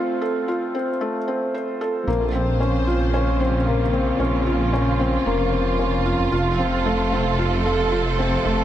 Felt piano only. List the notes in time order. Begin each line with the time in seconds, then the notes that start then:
Already playing: A3 C4 F4 A4
0.21 A4
0.48 F4
0.75 C4
1.01 A3
1.28 C4
1.54 C5
1.81 A4
2.07 A#3
2.34 C4
2.60 C#4
2.87 F4
3.14 C#4
3.40 C4
3.67 A#3
3.93 C4
4.20 C#4
4.46 F4
4.73 C#4
5.00 C4
5.26 A#3
5.53 C4
5.79 C#4
6.05 F4
6.32 F4
6.59 C4
6.86 A3
7.12 C4
7.39 F4
7.65 A4
7.92 F4
8.19 C4
8.45 A3